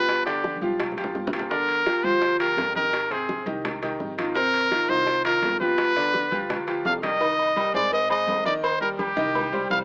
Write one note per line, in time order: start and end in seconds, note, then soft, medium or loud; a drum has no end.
0.00 0.56 G1 medium
0.00 0.20 F3 medium
0.00 0.20 F4 medium
0.00 0.20 G4 medium
0.00 0.23 B4 loud
0.09 high bongo medium
0.09 high conga soft
0.09 high timbale medium
0.26 0.55 D3 medium
0.26 0.55 D4 medium
0.26 0.59 G4 medium
0.26 0.56 D5 medium
0.26 high conga soft
0.26 high timbale medium
0.44 high bongo medium
0.44 high conga medium
0.56 high conga medium
0.61 1.11 B1 medium
0.61 0.91 F3 medium
0.61 0.91 F4 medium
0.61 0.91 G4 medium
0.61 high bongo soft
0.80 high bongo medium
0.80 low conga medium
0.80 high timbale loud
0.92 low conga medium
0.97 1.26 F3 medium
0.97 1.27 F4 medium
0.97 1.27 G4 medium
0.97 high bongo soft
0.97 high timbale medium
1.04 low conga medium
1.15 1.98 G1 medium
1.15 high bongo soft
1.15 low bongo medium
1.27 low conga loud
1.33 1.47 F3 medium
1.33 1.48 F4 medium
1.33 1.48 G4 medium
1.33 high bongo soft
1.33 high timbale loud
1.39 low conga medium
1.50 1.80 D3 medium
1.50 1.80 D4 medium
1.50 2.06 A#4 loud
1.50 1.80 D5 medium
1.50 high bongo medium
1.50 high conga soft
1.69 high conga soft
1.69 high timbale medium
1.86 2.01 F3 medium
1.86 2.01 F4 medium
1.86 2.01 G4 medium
1.86 high bongo medium
1.86 high conga medium
1.86 high timbale medium
2.04 2.54 D2 medium
2.04 2.33 F3 medium
2.04 2.33 F4 medium
2.04 2.33 G4 medium
2.04 2.40 C5 loud
2.04 high bongo soft
2.04 high conga soft
2.22 high bongo medium
2.22 high conga soft
2.22 high timbale medium
2.39 2.69 F3 medium
2.39 2.69 F4 medium
2.39 2.69 G4 medium
2.39 2.73 A#4 loud
2.39 high bongo soft
2.39 high conga soft
2.39 high timbale medium
2.57 3.41 G#1 medium
2.57 high bongo soft
2.57 low bongo medium
2.57 high conga medium
2.57 high timbale medium
2.57 low timbale medium
2.75 3.04 D#3 medium
2.75 3.05 D#4 medium
2.75 3.05 G4 medium
2.75 3.13 A#4 loud
2.75 high bongo soft
2.75 high conga medium
2.93 high bongo medium
2.93 high conga soft
2.93 high timbale loud
3.10 3.40 C3 medium
3.10 3.40 C4 medium
3.10 3.47 G#4 medium
3.10 3.40 C5 medium
3.10 high conga soft
3.10 high timbale medium
3.29 high bongo medium
3.29 high conga medium
3.46 3.96 C2 loud
3.46 3.76 D#3 medium
3.46 3.76 D#4 medium
3.46 3.76 G4 medium
3.46 high bongo soft
3.46 high conga medium
3.65 high bongo medium
3.65 high conga soft
3.65 low conga medium
3.65 high timbale loud
3.82 4.11 D#3 medium
3.82 4.12 D#4 medium
3.82 4.12 G4 medium
3.82 high bongo soft
3.82 high conga soft
3.82 low conga medium
3.82 high timbale medium
4.00 4.83 G#1 medium
4.00 high bongo soft
4.00 low bongo medium
4.00 high conga medium
4.18 4.33 D#3 medium
4.18 4.33 D#4 medium
4.18 4.33 F4 medium
4.18 high bongo soft
4.18 high conga medium
4.18 high timbale loud
4.36 4.65 C3 medium
4.36 4.65 C4 medium
4.36 4.91 A#4 loud
4.36 4.65 C5 medium
4.36 high bongo medium
4.36 high conga soft
4.54 high conga soft
4.54 high timbale medium
4.71 4.86 D#3 medium
4.71 4.86 D#4 medium
4.71 4.86 F4 medium
4.71 high bongo medium
4.71 high conga medium
4.71 high timbale medium
4.89 5.39 C2 medium
4.89 5.18 D#3 medium
4.89 5.19 D#4 medium
4.89 5.19 F4 medium
4.89 5.24 C5 loud
4.89 high bongo soft
4.89 high conga soft
5.07 high bongo medium
5.07 high conga soft
5.07 high timbale medium
5.24 5.54 D#3 medium
5.24 5.54 D#4 medium
5.24 5.54 F4 medium
5.24 5.58 A#4 loud
5.24 high bongo soft
5.24 high conga soft
5.24 high timbale loud
5.42 6.26 G1 medium
5.42 high bongo soft
5.42 low bongo medium
5.42 high conga medium
5.42 high timbale medium
5.42 low timbale medium
5.60 5.90 F3 medium
5.60 5.90 F4 medium
5.60 5.90 G4 medium
5.60 6.81 B4 loud
5.60 high bongo soft
5.60 high conga medium
5.78 high bongo medium
5.78 high conga soft
5.78 high timbale medium
5.96 6.25 D3 medium
5.96 6.26 D4 medium
5.96 6.26 D5 medium
5.96 high conga soft
5.96 high timbale medium
6.14 high bongo medium
6.14 high conga medium
6.31 6.81 D2 loud
6.31 6.61 F3 medium
6.31 6.61 F4 medium
6.31 6.61 G4 medium
6.31 high bongo soft
6.31 high conga medium
6.50 high bongo medium
6.50 high conga soft
6.50 low conga medium
6.50 high timbale loud
6.67 6.96 F3 medium
6.67 6.97 F4 medium
6.67 6.97 G4 medium
6.67 high bongo soft
6.67 high conga soft
6.67 high timbale medium
6.85 7.68 C2 medium
6.85 6.94 F5 loud
6.85 high bongo soft
6.85 low bongo medium
6.85 high conga medium
6.85 low timbale medium
7.03 7.18 G3 medium
7.03 7.18 G4 medium
7.03 7.18 A#4 medium
7.03 7.71 D#5 loud
7.03 high bongo soft
7.03 high conga medium
7.03 high timbale loud
7.20 7.50 D#3 medium
7.20 7.50 D#4 medium
7.20 7.50 D#5 medium
7.20 cowbell loud
7.20 high conga soft
7.20 low agogo medium
7.38 high conga soft
7.38 low agogo medium
7.56 7.71 G3 medium
7.56 7.71 G4 medium
7.56 7.71 A#4 medium
7.56 cowbell medium
7.56 high conga medium
7.56 low agogo medium
7.74 8.24 G#1 loud
7.74 8.04 G#3 medium
7.74 8.04 G#4 medium
7.74 8.04 C5 medium
7.74 7.92 D5 loud
7.74 cowbell medium
7.74 high conga soft
7.92 8.10 D#5 loud
7.92 cowbell loud
7.92 high conga soft
7.92 low agogo medium
8.09 8.39 G#3 medium
8.09 8.39 G#4 medium
8.09 8.39 C5 medium
8.09 8.44 D#5 loud
8.09 high conga soft
8.09 low agogo loud
8.27 9.11 D#2 medium
8.27 cowbell medium
8.27 high conga medium
8.27 low timbale medium
8.45 8.75 D#3 medium
8.45 8.75 D#4 medium
8.45 8.54 D5 loud
8.45 8.75 D#5 medium
8.45 high conga medium
8.63 8.80 C5 loud
8.63 cowbell loud
8.63 high conga soft
8.63 low agogo loud
8.81 9.10 G3 medium
8.81 9.11 G4 medium
8.81 8.89 A#4 medium
8.81 9.11 A#4 medium
8.81 high conga soft
8.99 9.67 G4 medium
8.99 cowbell medium
8.99 high conga medium
8.99 low agogo medium
9.16 9.67 C2 loud
9.16 9.46 D#3 loud
9.16 9.46 D#4 medium
9.16 9.46 D#5 loud
9.16 high conga loud
9.35 cowbell loud
9.35 high conga soft
9.35 low conga medium
9.35 low agogo loud
9.53 9.82 G3 medium
9.53 9.82 G4 medium
9.53 9.82 C5 medium
9.53 high conga soft
9.53 low conga medium
9.70 9.84 C2 loud
9.70 9.79 F5 loud
9.70 cowbell medium
9.70 high conga medium
9.70 low agogo medium